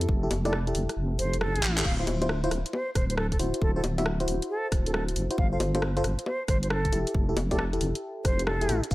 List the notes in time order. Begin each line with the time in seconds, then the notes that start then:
Already playing: E4 G4 A4
0.01 closed hi-hat
0.09 F1, kick
0.23 E4 G4 A4
0.31 F1, open hi-hat, high bongo
0.45 E4 G4 A4 D5, cross-stick, open hi-hat, high bongo
0.53 cross-stick
0.67 E4 G4 A4, closed hi-hat
0.75 F1, open hi-hat
0.89 cross-stick, closed hi-hat
0.97 F1
1.19 F1 C5, open hi-hat
1.33 closed hi-hat
1.41 A4, cross-stick
1.55 A1, closed hi-hat
1.63 A1, clap, open hi-hat
1.77 E4 G4 A4, clap, closed hi-hat
1.85 D1 F5, kick, crash
1.99 E4 F4 C5 F5
2.07 D1, open hi-hat, high bongo
2.22 E4 F4 C5, closed hi-hat, high bongo
2.29 cross-stick
2.44 E4 F4 C5, closed hi-hat
2.51 D1, cross-stick, open hi-hat
2.66 closed hi-hat
2.73 C5, high bongo
2.95 D1 C5, kick, cross-stick, open hi-hat
3.10 C5, closed hi-hat
3.17 A4, cross-stick
3.32 A4, kick, closed hi-hat
3.39 D1 E4 F#4 C5, open hi-hat
3.54 closed hi-hat
3.61 D1 A4, kick
3.76 E4 F#4 A4 C5
3.84 D1, open hi-hat, high bongo
3.98 E4 F#4 E5, open hi-hat, high bongo
4.06 cross-stick
4.20 E4 F#4 C5, closed hi-hat
4.28 D1, open hi-hat
4.42 closed hi-hat
4.50 A4
4.72 D1, kick, cross-stick, open hi-hat
4.86 A4, closed hi-hat
4.94 A4, cross-stick
5.08 closed hi-hat
5.16 F#1, open hi-hat
5.31 E4 F#4 C5, closed hi-hat
5.38 G1 F5, kick
5.52 F4 A4 C5 F5
5.60 G1, open hi-hat, high bongo
5.75 F4 A4 C5, closed hi-hat, high bongo
5.82 cross-stick
5.97 F4 A4 C5, closed hi-hat
6.04 G1, cross-stick, open hi-hat
6.19 closed hi-hat
6.26 C5, high bongo
6.48 G1 C5, kick, cross-stick, open hi-hat
6.63 C5, closed hi-hat
6.70 A4, cross-stick
6.85 kick, closed hi-hat
6.92 F1 E4 G4 A4, open hi-hat
7.07 closed hi-hat
7.14 F1, kick
7.29 E4 G4 A4
7.37 F1, open hi-hat, high bongo
7.51 E4 G4 A4 D5, kick, open hi-hat, high bongo
7.59 cross-stick
7.73 E4 G4 A4, closed hi-hat
7.81 F1, open hi-hat
7.95 closed hi-hat
8.25 F1 C5, kick, cross-stick, open hi-hat
8.39 closed hi-hat
8.47 A4, cross-stick
8.61 E4 G4 A4, closed hi-hat
8.69 A1 E4 G4 A4, open hi-hat
8.84 closed hi-hat
8.91 D1 F5, kick, shaker